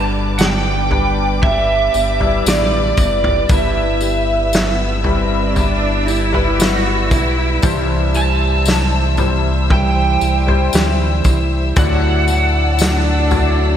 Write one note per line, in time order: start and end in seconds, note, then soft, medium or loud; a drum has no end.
0.00 1.90 G1 medium
0.00 0.87 G2 medium
0.00 0.87 D3 medium
0.00 0.38 G3 soft
0.00 0.83 G3 medium
0.00 0.38 B3 soft
0.00 0.39 D4 soft
0.00 0.83 D4 medium
0.00 0.38 G4 medium
0.00 0.84 B4 loud
0.00 7.59 B4 medium
0.00 3.46 D5 medium
0.00 3.46 D6 medium
0.38 1.42 G2 medium
0.38 1.42 D3 medium
0.38 1.41 G3 medium
0.38 1.42 B3 medium
0.38 1.43 D4 medium
0.38 1.44 G4 medium
0.38 1.38 G5 medium
0.38 snare loud
0.38 tambourine medium
0.90 2.13 G3 medium
0.90 2.14 D4 medium
0.90 2.14 B4 medium
0.90 floor tom medium
1.42 1.94 G3 medium
1.42 1.94 B3 medium
1.42 1.94 D4 medium
1.42 1.93 G4 medium
1.42 2.42 E5 medium
1.42 kick medium
1.42 floor tom medium
1.94 2.42 G1 loud
1.94 2.46 G3 soft
1.94 2.46 B3 soft
1.94 2.46 D4 medium
1.94 2.46 G4 soft
1.94 tambourine soft
2.20 3.43 G3 medium
2.20 3.43 D4 medium
2.20 3.44 E4 medium
2.20 floor tom medium
2.46 2.94 A1 medium
2.46 2.97 G2 medium
2.46 2.98 D3 medium
2.46 2.98 G3 medium
2.46 2.98 B3 medium
2.46 2.98 D4 medium
2.46 2.96 G4 medium
2.46 2.98 D5 medium
2.46 snare loud
2.46 tambourine medium
2.97 3.46 F#1 medium
2.97 3.48 G3 soft
2.97 3.49 B3 soft
2.97 3.50 D4 soft
2.97 3.49 G4 soft
2.97 3.51 D5 medium
2.97 kick medium
2.97 tambourine soft
3.24 floor tom medium
3.49 7.13 G1 loud
3.49 5.01 G2 medium
3.49 4.01 G3 medium
3.49 4.97 G3 medium
3.49 4.01 B3 medium
3.49 4.02 E4 medium
3.49 4.97 E4 medium
3.49 4.00 G4 medium
3.49 4.98 B4 medium
3.49 11.74 E5 medium
3.49 5.53 E5 medium
3.49 11.74 E6 medium
3.49 kick loud
3.49 floor tom loud
3.49 tambourine medium
4.01 4.54 B3 soft
4.01 4.53 E4 soft
4.01 4.53 G4 medium
4.01 tambourine soft
4.53 5.55 G3 medium
4.53 5.01 B3 medium
4.53 5.57 E4 medium
4.53 5.58 G4 medium
4.53 snare loud
4.53 tambourine medium
5.04 6.27 G3 medium
5.04 5.56 C4 medium
5.04 6.28 E4 medium
5.04 6.28 B4 medium
5.04 floor tom medium
5.56 6.08 G3 medium
5.56 6.08 B3 medium
5.56 6.08 D4 medium
5.56 6.08 E4 medium
5.56 6.06 G4 medium
5.56 floor tom medium
5.56 tambourine soft
6.07 6.58 B3 soft
6.07 6.53 E4 loud
6.07 6.59 E4 medium
6.07 6.59 G4 medium
6.07 tambourine soft
6.33 7.56 G3 medium
6.33 7.57 E4 medium
6.33 7.57 B4 loud
6.33 floor tom medium
6.53 6.60 G4 medium
6.59 7.11 G3 medium
6.59 7.11 B3 loud
6.59 7.11 E4 loud
6.59 7.11 F#4 loud
6.59 snare loud
6.59 tambourine medium
7.10 7.59 B1 medium
7.10 7.63 B3 soft
7.10 7.85 E4 medium
7.10 7.63 E4 medium
7.10 7.63 G4 medium
7.10 kick medium
7.10 tambourine soft
7.62 10.18 C2 loud
7.62 9.14 G2 medium
7.62 8.14 C3 medium
7.62 8.15 E3 medium
7.62 9.10 G3 medium
7.62 8.15 G3 loud
7.62 9.11 E4 medium
7.62 8.15 E4 medium
7.62 8.13 G4 medium
7.62 11.73 C5 medium
7.62 9.11 C5 medium
7.62 kick loud
7.62 floor tom loud
7.62 tambourine medium
8.14 8.66 G3 soft
8.14 8.66 E4 medium
8.14 8.66 G4 medium
8.14 9.15 A5 loud
8.14 tambourine medium
8.65 9.70 C3 medium
8.65 9.69 E3 medium
8.65 9.69 G3 medium
8.65 9.71 E4 medium
8.65 9.71 G4 medium
8.65 snare loud
8.65 tambourine medium
9.17 10.41 G3 medium
9.17 10.41 E4 medium
9.17 10.42 C5 medium
9.17 floor tom medium
9.17 tambourine soft
9.69 10.21 E3 medium
9.69 10.22 G3 medium
9.69 10.21 E4 medium
9.69 10.19 G4 medium
9.69 11.78 G5 medium
9.69 kick medium
9.69 floor tom medium
10.21 10.70 C2 loud
10.21 10.72 G3 soft
10.21 10.73 E4 medium
10.21 10.73 G4 medium
10.21 tambourine soft
10.47 11.70 G3 medium
10.47 11.70 E4 medium
10.47 11.71 C5 medium
10.47 floor tom medium
10.73 11.22 D2 medium
10.73 11.25 C3 medium
10.73 11.25 E3 medium
10.73 11.25 G3 medium
10.73 11.25 E4 medium
10.73 11.23 G4 medium
10.73 snare loud
10.73 tambourine medium
11.24 11.73 C2 medium
11.24 11.77 G3 medium
11.24 11.77 E4 medium
11.24 11.76 G4 medium
11.24 kick medium
11.24 tambourine soft
11.76 13.77 D2 loud
11.76 13.28 A2 medium
11.76 12.28 D3 medium
11.76 13.24 F#3 medium
11.76 12.29 F#3 medium
11.76 12.29 A3 medium
11.76 12.29 D4 medium
11.76 13.24 E4 medium
11.76 12.27 E4 medium
11.76 13.77 D5 medium
11.76 13.25 D5 medium
11.76 13.77 F#5 medium
11.76 13.77 A5 medium
11.76 13.77 E6 medium
11.76 kick loud
11.76 floor tom loud
11.76 tambourine medium
12.28 12.80 A3 soft
12.28 12.80 D4 medium
12.28 12.80 E4 medium
12.28 tambourine soft
12.73 12.80 E4 medium
12.79 13.77 D3 medium
12.79 13.77 F#3 medium
12.79 13.77 A3 medium
12.79 13.77 D4 medium
12.79 13.77 E4 medium
12.79 snare loud
12.79 tambourine medium
13.31 13.77 F#3 medium
13.31 13.77 E4 medium
13.31 13.77 D5 medium
13.31 floor tom medium
13.31 tambourine soft